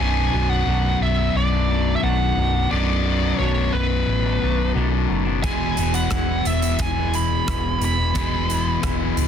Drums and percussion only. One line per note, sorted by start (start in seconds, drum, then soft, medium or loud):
5.44 kick loud
5.44 closed hi-hat medium
5.77 closed hi-hat medium
5.94 closed hi-hat medium
6.10 kick medium
6.10 cross-stick medium
6.10 closed hi-hat medium
6.45 closed hi-hat medium
6.62 closed hi-hat medium
6.79 kick loud
6.79 closed hi-hat medium
7.14 closed hi-hat medium
7.48 kick medium
7.48 cross-stick medium
7.48 closed hi-hat medium
7.82 closed hi-hat medium
8.15 kick loud
8.15 closed hi-hat medium
8.50 closed hi-hat medium
8.83 kick medium
8.83 cross-stick medium
8.83 closed hi-hat medium
9.17 closed hi-hat medium